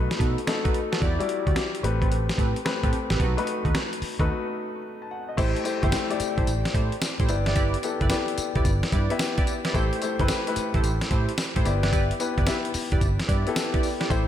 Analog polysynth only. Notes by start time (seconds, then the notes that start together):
0.19 D#4 F#4 A4 B4
0.64 D#4 F#4 A4 B4
0.92 D#4 F#4 A4 B4
1.01 E4 F#4 G4 D5
1.47 E4 F#4 G4 D5
2.02 C4 G4 A4 B4
2.38 C4 G4 A4 B4
2.83 C4 G4 A4 B4
3.10 C4 G4 A4 B4
3.20 D#4 F#4 A4 B4
3.65 D#4 F#4 A4 B4
4.20 D#4 F#4 A4 B4
5.37 E4 G4 A4 C5
5.83 E4 G4 A4 C5
6.37 E4 G4 A4 C5
6.74 E4 G4 A4 C5
7.20 E4 G4 A4 C5
7.47 E4 G4 B4 D5
7.56 E4 G4 B4 D5
8.01 E4 G4 B4 D5
8.56 E4 G4 B4 D5
8.93 E4 G4 B4 D5
9.38 E4 G4 B4 D5
9.65 E4 G4 B4 D5
9.75 E4 G4 A4 C5
10.20 E4 G4 A4 C5
10.74 E4 G4 A4 C5
11.11 E4 G4 A4 C5
11.56 E4 G4 A4 C5
11.83 E4 G4 B4 D5
11.92 E4 G4 B4 D5
12.38 E4 G4 B4 D5
12.92 E4 G4 B4 D5
13.28 E4 G4 B4 D5
13.73 E4 G4 B4 D5
14.00 E4 G4 B4 D5
14.10 E4 G4 A4 C5